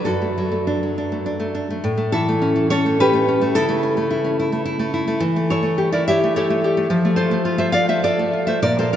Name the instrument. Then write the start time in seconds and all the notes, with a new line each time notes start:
nylon-string guitar
0.05 F#2 F#4 A4
0.22 A3
0.38 F#3
0.52 A3
0.67 D4
0.83 F#3
0.98 D4
1.12 A3
1.26 D4
1.40 A3
1.55 D4
1.70 A3
1.84 A2
1.98 A3
2.12 E3 E4 A4
2.29 A3
2.42 C#4
2.56 E3
2.70 C#4 A4 C#5
2.86 A3
3.00 C#4 G4 B4
3.13 A3
3.28 C#4
3.41 A3
3.55 C#3 E4 A4
3.69 A3
3.83 C#4
3.97 A3
4.11 E4
4.24 C#4
4.39 E4
4.52 A3
4.65 E4
4.79 A3
4.94 E4
5.07 A3
5.20 E3
5.36 A3
5.50 E4 A4 C#5
5.63 A3
5.78 G4
5.92 E4 A#4 D5
6.08 G4 C#5 E5
6.24 A3
6.36 G4 A4 C#5
6.50 A3
6.64 G4
6.77 A3
6.90 F3
7.05 A3
7.16 F4 A4 C5
7.31 A3
7.45 F4
7.58 A3 C5 E5
7.72 F4 D5 F5
7.88 A3 C5 E5
8.04 F4 A4 D5
8.19 A3
8.33 F4
8.47 A3 C5 E5
8.62 A#2 A#4 D5
8.79 A#3 A4 C5
8.93 F3 A#4